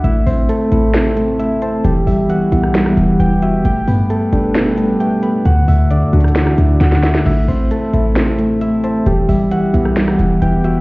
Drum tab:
CC |------------------------------------------------|------------------------------------------------|------------------------------------------------|------------------------------------------------|
HH |x-----o-----x-----x-----x-----x-----x-----x-----|x-----o-----x-----x-----x-----x-----x-----x-----|x-----o-----x-----x-----x-----x-----x-----x-----|x-----o-----x-----x-x-x-x-----x-----x-----x-----|
SD |------------------------o-----------------------|---------------------r--o--r--------------------|------------------------o-----------------------|---------------------r--o--r--------o--o--o--o--|

CC |x-----------------------------------------------|------------------------------------------------|
HH |------o-----x-----x-----x-----x-----x-----x-----|x-----o-----x-----x-----x-----x-----x-----x-----|
SD |------------------------o-----------------------|---------------------r--o--r--------------------|